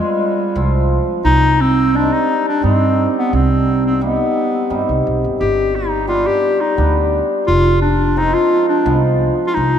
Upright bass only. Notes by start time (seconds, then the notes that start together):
0.56 C2
1.25 C2
2.64 G2
3.33 C2
4.71 G2
4.89 C2
5.07 B1
5.24 G1
5.41 G1
6.78 D2
7.48 F1
8.86 C2
9.57 C2